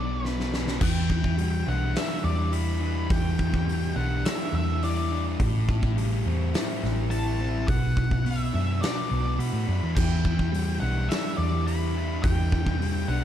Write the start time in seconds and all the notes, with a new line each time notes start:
Already playing: B1 B2 F#3 B3 D4 D5
0.23 B3 C5 B5, snare
0.40 snare
0.52 D4, snare
0.68 snare
0.80 E2 E3 G5, kick, crash
1.10 kick
1.24 kick
1.38 G3, open hi-hat
1.66 B1 D4 F#5
1.94 E4 E5, snare, open hi-hat
2.24 E2 G3 D5
2.52 E4 B5, open hi-hat
2.80 D4
3.09 E2 E3 G5, kick, open hi-hat
3.39 kick
3.54 kick
3.67 G3, open hi-hat
3.96 B1 D4 F#5
4.25 E4 E5, snare, open hi-hat
4.53 E2 G3 E5
4.82 E4 D5, open hi-hat
5.11 D4
5.39 A1 A2, kick, open hi-hat
5.69 kick
5.83 kick
5.96 G3, open hi-hat
6.26 E2 C4
6.54 E4, snare, open hi-hat
6.84 A1 G3, snare
7.10 E4 A5, open hi-hat
7.41 C4
7.68 B1 B2 F#5, kick, open hi-hat
7.97 kick
8.11 kick
8.25 B3 E5, open hi-hat
8.53 F#2 D4
8.82 F#4 D5, snare, open hi-hat
9.10 B1 B3
9.39 B2 F#4 B5, open hi-hat
9.53 A2
9.67 F#2 D4
9.83 E2
9.95 E2 E3 G5, kick, crash
10.25 kick
10.39 kick
10.52 G3, open hi-hat
10.80 B1 D4 F#5
11.09 E4 E5, snare, open hi-hat
11.37 E2 G3 D5
11.66 E4 B5, open hi-hat
11.95 D4
12.22 E2 E3 G5, kick, open hi-hat
12.52 kick
12.67 kick
12.81 G3, open hi-hat
13.08 B1 D4 F#5